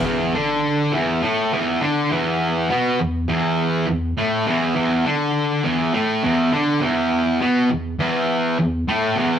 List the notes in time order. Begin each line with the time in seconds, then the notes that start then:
0.05 E2 E3
0.34 D3 D4
0.92 E2 E3
1.22 A2 A3
1.53 E2 E3
1.81 D3 D4
2.11 E2 E3
2.69 B2 B3
3.00 E2
3.28 E2 E3
3.87 E2
4.18 A2 A3
4.47 E2 E3
4.75 E2 E3
5.05 D3 D4
5.64 E2 E3
5.93 A2 A3
6.24 E2 E3
6.52 D3 D4
6.81 E2 E3
7.40 B2 B3
7.70 E2
7.99 E2 E3
8.59 E2
8.88 A2 A3
9.16 E2 E3